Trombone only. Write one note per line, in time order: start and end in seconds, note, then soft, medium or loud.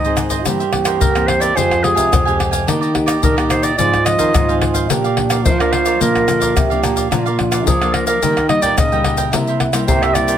0.00 0.46 D#4 medium
0.44 1.58 G4 loud
1.56 2.41 F4 medium
2.67 3.80 D#4 medium
3.79 4.89 F4 medium
4.89 5.46 G4 loud
5.44 6.57 F4 loud
6.56 7.13 G4 loud
7.11 7.95 F4 medium
8.22 9.34 D#4 medium
9.33 9.87 E4 medium
9.87 10.38 G4 loud